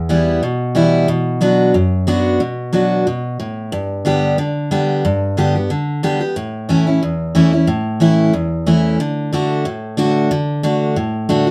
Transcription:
Already playing: E2
0.09 E3 G3 B3 E4
0.43 B2
0.75 E3 G3 B3 E4
1.08 B2
1.41 F#3 B3 D4 F#4
1.74 F#2
2.07 F#3 B3 D4 F#4
2.40 B2
2.73 F#3 B3 D4 F#4
3.07 B2
3.40 A2
3.72 G2
4.05 D3 G3 B3 G4
4.38 D3
4.71 D3 G3 B3 G4
5.05 G2
5.37 D3 G3 B3 G4
5.55 B3 G4
5.70 D3
6.03 D3 G3 B3 G4
6.20 B3 G4
6.36 A2
6.69 E3 A3 C#4 E4
6.87 C#4 E4
7.03 E2
7.35 E3 A3 C#4 E4
7.53 C#4 E4
7.67 A2
8.00 E3 A3 C#4 E4
8.33 E2
8.66 E3 A3 C#4 E4
9.00 D3
9.33 D3 A3 D4 F#4
9.65 A2
9.97 D3 A3 D4 F#4
10.31 D3
10.63 D3 A3 D4 F#4
10.96 A2
11.29 D3 A3 D4 F#4
11.47 F#4

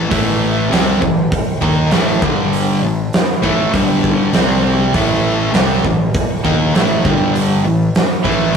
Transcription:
0.10 A1 A2 E3 A3, kick, open hi-hat
0.70 C2 C3 G3 C4, snare, open hi-hat
1.01 A1 A2 E3, kick
1.32 kick, open hi-hat
1.61 D#2 D#3 A#3 D#4, kick
1.91 A1 A2 E3 A3, snare, open hi-hat
2.22 G1 G2 D3 G3, kick
2.53 open hi-hat
2.82 A1 A2 E3
3.13 snare, open hi-hat
3.42 A1 A2 E3 A3, kick
3.72 G1 G2 D3 G3, kick, open hi-hat
4.04 kick
4.32 C2 C3 G3 C4, snare, open hi-hat
4.94 A1 A2 E3 A3, kick, open hi-hat
5.54 C2 C3 G3 C4, snare, open hi-hat
5.85 A1 A2 E3, kick
6.14 kick, open hi-hat
6.44 D#2 D#3 A#3 D#4, kick
6.74 A1 A2 E3 A3, snare, open hi-hat
7.03 G1 G2 D3 G3, kick
7.35 open hi-hat
7.64 A1 A2 E3
7.95 snare, open hi-hat
8.24 A1 A2 E3 A3, kick
8.53 G2 D3

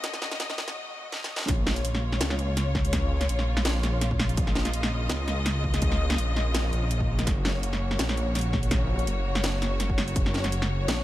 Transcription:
Already playing: F#1 C#3 A#3 F#4 D#5
0.04 snare, closed hi-hat
0.13 snare
0.22 F#1, snare
0.31 snare, closed hi-hat
0.40 snare, closed hi-hat
0.50 snare
0.58 snare
0.68 snare
1.12 snare
1.24 snare
1.36 snare
1.39 snare
1.41 snare
1.44 snare
1.46 snare
1.48 A#1 C#3 A#3 F4 C#5, kick, snare, closed hi-hat
1.50 snare
1.53 snare
1.67 snare
1.76 closed hi-hat
1.85 closed hi-hat
1.95 snare
2.12 snare
2.21 C#2, snare, closed hi-hat
2.30 snare
2.39 closed hi-hat
2.57 snare, closed hi-hat
2.75 kick, snare
2.85 closed hi-hat
2.93 kick, snare, closed hi-hat
3.21 snare, closed hi-hat
3.29 A#1, closed hi-hat
3.39 snare
3.57 snare
3.65 snare, closed hi-hat
3.83 snare, closed hi-hat
4.01 snare, closed hi-hat
4.11 kick
4.19 snare
4.29 closed hi-hat
4.37 A#1 D#5, kick, closed hi-hat
4.47 snare
4.55 snare
4.65 snare, closed hi-hat
4.73 closed hi-hat
4.83 snare
5.09 C#2, snare, closed hi-hat
5.12 snare
5.14 snare
5.17 snare
5.28 snare, closed hi-hat
5.46 snare, closed hi-hat
5.64 kick
5.74 snare, closed hi-hat
5.82 kick, closed hi-hat
5.92 snare
6.10 snare, closed hi-hat
6.12 snare
6.14 snare
6.16 A#1, snare, closed hi-hat
6.36 snare
6.54 snare, closed hi-hat
6.73 A#1, closed hi-hat
6.91 closed hi-hat
7.00 kick
7.19 snare, closed hi-hat
7.27 F#1 F#4 C#5, kick, snare, closed hi-hat
7.45 snare
7.63 closed hi-hat
7.73 snare
7.91 snare
7.99 A#1, snare, closed hi-hat
8.09 snare
8.17 closed hi-hat
8.35 snare, closed hi-hat
8.39 closed hi-hat
8.41 closed hi-hat
8.53 kick, snare
8.63 closed hi-hat
8.71 kick, snare, closed hi-hat
8.99 closed hi-hat
9.07 F#1, closed hi-hat
9.35 snare
9.44 snare, closed hi-hat
9.62 snare, closed hi-hat
9.80 snare, closed hi-hat
9.90 kick
9.98 snare
10.08 closed hi-hat
10.16 F#1, kick, closed hi-hat
10.26 snare
10.34 snare
10.44 snare, closed hi-hat
10.52 closed hi-hat
10.62 snare
10.88 A#1, snare, closed hi-hat

